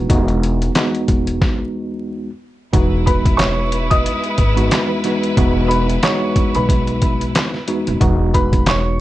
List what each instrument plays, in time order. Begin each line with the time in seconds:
0.10 upright bass E1, tine electric piano E2 G#3 B3 D#4 F#4, kick, closed hi-hat
0.28 closed hi-hat
0.43 closed hi-hat
0.62 closed hi-hat
0.75 tine electric piano E2 G#3 B3 D#4 F#4, snare, clap, closed hi-hat
0.95 closed hi-hat
1.08 upright bass E1, kick, closed hi-hat
1.27 closed hi-hat
1.41 kick, snare
2.73 upright bass E1, tine electric piano E2 G#3 B3 D#4 F#4, string section G#3 E4 B4, kick, closed hi-hat
3.06 upright piano B4 B5, kick, closed hi-hat
3.25 kick, closed hi-hat
3.37 upright piano C#5 C#6, snare, clap, closed hi-hat
3.72 closed hi-hat
3.90 upright piano D#5 D#6, kick, closed hi-hat
4.06 closed hi-hat
4.24 closed hi-hat
4.38 upright bass G#1, kick, closed hi-hat
4.56 tine electric piano E2 G#3 B3 D#4 F#4, closed hi-hat
4.71 snare, clap, closed hi-hat
5.04 tine electric piano E2 G#3 B3 D#4 F#4, snare, closed hi-hat
5.23 closed hi-hat
5.37 upright bass E1, tine electric piano E2 G#3 B3 D#4 F#4, kick, closed hi-hat
5.68 upright piano B4 B5, closed hi-hat
5.89 closed hi-hat
6.03 tine electric piano E2 G#3 B3 D#4 F#4, upright piano C#5 C#6, snare, clap, closed hi-hat
6.36 kick, closed hi-hat
6.55 upright bass B1, upright piano B4 B5, closed hi-hat
6.69 kick, closed hi-hat
6.87 closed hi-hat
7.02 kick, closed hi-hat
7.21 closed hi-hat
7.35 snare, clap, closed hi-hat
7.54 snare
7.67 tine electric piano E2 G#3 B3 D#4 F#4, closed hi-hat
7.87 upright bass D#1, closed hi-hat
8.00 upright bass E1, tine electric piano E2 G#3 B3 D#4 F#4, kick, closed hi-hat
8.34 upright piano B4 B5, kick, closed hi-hat
8.53 kick, closed hi-hat
8.66 upright piano C#5 C#6, snare, clap, closed hi-hat